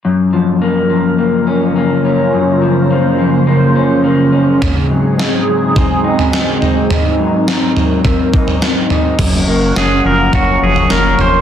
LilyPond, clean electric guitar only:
\new Staff \with { instrumentName = "Clean electric guitar" } { \time 4/4 \key ges \lydian \tempo 4 = 105 ges,8 f8 bes8 f8 bes8 des'8 bes8 des'8 | ges,8 f8 bes8 f8 bes8 des'8 bes8 des'8 | aes,8 ges8 c'8 ges8 c'8 ees'8 c'8 ees'8 | aes,8 ges8 c'8 ges8 c'8 ees'8 c'8 ees'8 |
ges,8 bes8 des'8 f8 des'8 f8 bes8 des'8 | }